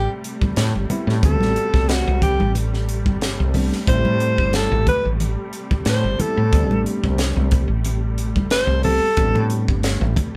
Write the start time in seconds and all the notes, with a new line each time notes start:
Already playing: C3 G3 A3 G4
0.24 closed hi-hat
0.41 muted fretless electric bass stroke, kick, high conga
0.56 A2, snare, closed hi-hat
0.75 G1
0.90 G3 B3 C4 E4, muted fretless electric bass stroke, closed hi-hat, high conga, low conga
1.07 A2, snare
1.23 D2 G3 B3 C4 F#4 A4, kick, closed hi-hat
1.41 A1, snare, high conga
1.56 muted fretless electric bass stroke, closed hi-hat
1.74 C2, kick, snare
1.89 F#4, snare, closed hi-hat
2.07 C2
2.22 G4, kick, closed hi-hat, low conga
2.40 A1, high conga
2.55 closed hi-hat, high conga
2.74 snare
2.89 closed hi-hat
3.06 G1, kick, high conga
3.21 snare, closed hi-hat
3.40 C2
3.54 G3 B3 C4 D4, open hi-hat, high conga, low conga
3.72 muted fretless electric bass stroke, snare
3.87 A1 G3 A3 C4 E4 C5, kick, closed hi-hat
4.05 A2, high conga
4.20 closed hi-hat
4.38 G1, kick
4.53 A4, snare, closed hi-hat
4.72 A1
4.87 B4, kick, closed hi-hat, low conga
5.05 A1
5.20 closed hi-hat, low conga
5.53 closed hi-hat
5.71 muted fretless electric bass stroke, kick, high conga
5.85 A2 C5, snare, closed hi-hat
6.04 G1
6.19 G3 B3 C4 E4 A4, muted fretless electric bass stroke, closed hi-hat, high conga, low conga
6.37 A2
6.51 D2 G3 B3 C4 D4, kick, closed hi-hat
6.70 A1, high conga
6.85 muted fretless electric bass stroke, closed hi-hat
7.04 C2, kick
7.18 snare, closed hi-hat
7.36 C2
7.51 kick, closed hi-hat, low conga
7.68 A1
7.85 closed hi-hat, low conga
8.18 closed hi-hat
8.36 G1, kick, high conga
8.50 C5, snare, closed hi-hat
8.67 C2
8.83 G3 B3 C4 G4 A4, open hi-hat, high conga, low conga
9.17 A1 G3 B3 C4 D4, kick, closed hi-hat
9.35 A2, high conga
9.50 closed hi-hat
9.68 G1, kick
9.83 snare, closed hi-hat
10.01 A1
10.16 kick, closed hi-hat, low conga